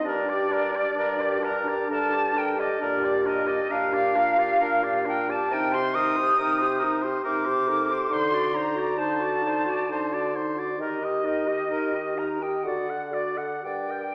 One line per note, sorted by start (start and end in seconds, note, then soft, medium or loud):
0.03 0.86 G2 medium
0.03 0.27 D4 medium
0.03 0.67 G4 medium
0.03 1.46 D5 medium
0.08 0.31 A#4 medium
0.26 0.50 G4 medium
0.26 0.54 D5 medium
0.48 0.72 D4 medium
0.52 0.77 A#4 medium
0.71 0.93 G4 soft
0.76 0.98 D5 medium
0.94 1.18 D4 medium
0.94 1.91 A#4 medium
0.98 1.79 G2 medium
0.98 1.22 A#4 medium
1.17 1.41 G4 medium
1.21 1.45 D5 medium
1.40 1.66 D4 medium
1.40 1.70 A#4 medium
1.45 1.90 A#5 medium
1.65 1.87 G4 medium
1.65 1.90 D5 medium
1.87 2.71 G2 medium
1.87 2.11 D4 medium
1.87 2.81 A4 medium
1.87 2.15 A#4 medium
1.91 2.39 A5 loud
2.10 2.34 G4 medium
2.10 2.39 D5 medium
2.33 2.58 D4 medium
2.37 2.62 A#4 medium
2.37 2.60 G5 medium
2.56 2.79 G4 medium
2.56 2.82 D5 medium
2.56 2.83 D#5 medium
2.79 3.60 A#2 medium
2.79 3.03 D4 medium
2.79 3.69 G4 medium
2.79 3.06 A#4 medium
2.79 3.29 D5 medium
3.02 3.27 G4 medium
3.02 3.28 D5 medium
3.25 3.49 D4 medium
3.25 3.49 A#4 medium
3.25 3.73 D#5 medium
3.47 3.69 G4 medium
3.47 3.69 D5 medium
3.69 4.51 A#2 medium
3.69 3.94 D4 medium
3.69 4.15 G4 medium
3.69 3.95 A#4 medium
3.69 5.06 F5 loud
3.93 4.16 G4 medium
3.93 4.17 D5 medium
4.14 4.39 D4 medium
4.14 5.47 F4 medium
4.14 4.41 A#4 medium
4.37 4.60 G4 medium
4.37 4.60 D5 medium
4.60 5.40 A#2 medium
4.60 4.84 D4 medium
4.60 4.85 A#4 medium
4.83 5.07 G4 medium
4.83 5.07 D5 medium
5.05 5.30 D4 medium
5.05 5.31 A#4 medium
5.05 5.33 G5 medium
5.28 5.50 G4 medium
5.28 5.50 D5 medium
5.28 5.54 A5 medium
5.50 6.27 C3 medium
5.50 6.94 D#4 medium
5.50 5.76 D#4 medium
5.50 5.74 A#4 medium
5.50 5.75 G5 medium
5.72 5.98 G4 medium
5.72 5.96 C5 medium
5.72 5.96 C6 medium
5.94 6.19 D#4 medium
5.94 6.18 A#4 medium
5.94 6.98 D#6 medium
6.16 6.38 G4 medium
6.16 6.36 C5 medium
6.37 7.14 C3 medium
6.37 6.64 D#4 medium
6.37 6.61 A#4 medium
6.59 6.85 G4 medium
6.59 6.81 C5 medium
6.80 7.03 A#4 medium
6.84 7.06 D#4 medium
7.02 7.25 G4 medium
7.02 7.23 C5 medium
7.24 8.00 C3 medium
7.24 7.48 D#4 medium
7.24 7.69 G4 medium
7.24 7.47 A#4 medium
7.24 8.14 D6 medium
7.45 7.70 G4 medium
7.45 7.69 C5 medium
7.67 7.91 D#4 soft
7.67 8.99 A4 medium
7.67 7.93 A#4 soft
7.89 8.09 G4 soft
7.89 8.11 C5 medium
8.10 8.87 D3 medium
8.10 8.33 D#4 medium
8.10 8.35 C5 medium
8.10 8.56 C6 medium
8.31 8.54 F#4 medium
8.31 8.58 D5 medium
8.53 8.77 D#4 soft
8.53 8.80 C5 medium
8.53 8.99 A#5 medium
8.75 8.96 F#4 medium
8.75 8.99 D5 soft
8.97 9.78 D3 medium
8.97 9.21 D#4 medium
8.97 9.91 F#4 medium
8.97 9.25 C5 medium
8.97 10.34 A5 medium
9.20 9.44 F#4 medium
9.20 9.49 D5 soft
9.42 9.67 D#4 soft
9.47 9.71 C5 soft
9.66 9.88 F#4 soft
9.66 9.90 D5 soft
9.88 10.69 D3 medium
9.88 10.35 D4 medium
9.88 10.12 D#4 soft
9.88 10.15 C5 soft
10.11 10.36 F#4 soft
10.11 10.37 D5 soft
10.34 10.58 D#4 soft
10.34 10.79 F#4 medium
10.34 10.60 C5 soft
10.56 10.76 F#4 soft
10.56 10.80 D5 soft
10.77 11.60 D#3 medium
10.77 11.01 D#4 soft
10.77 12.66 G4 medium
10.77 12.20 D#5 medium
10.81 11.06 A#4 medium
11.00 11.26 G4 soft
11.04 11.28 D#5 soft
11.24 11.48 D#4 soft
11.24 11.50 A#4 soft
11.47 11.68 G4 soft
11.47 11.70 D#5 soft
11.68 12.54 D#3 medium
11.68 11.93 D#4 soft
11.68 11.97 A#4 soft
11.92 12.17 G4 soft
11.92 12.20 D#5 soft
12.15 12.41 D#4 soft
12.15 12.44 A#4 soft
12.15 12.44 A#5 medium
12.40 12.63 G4 soft
12.40 12.65 D#5 soft
12.40 12.64 G5 soft
12.63 13.52 D3 soft
12.63 12.89 F#4 soft
12.63 13.33 A4 medium
12.63 13.10 F#5 medium
12.67 12.92 D5 soft
12.88 13.13 A4 soft
12.88 13.16 F#5 soft
13.10 13.38 F#4 soft
13.10 13.39 D5 soft
13.37 13.62 A4 soft
13.37 13.64 F#5 soft
13.37 13.66 F#5 soft
13.63 14.15 G2 soft
13.63 13.91 G4 soft
13.63 14.15 A#4 soft
13.63 13.93 D5 soft
13.63 14.15 G5 medium
13.89 14.15 A#4 soft
13.89 14.15 G5 soft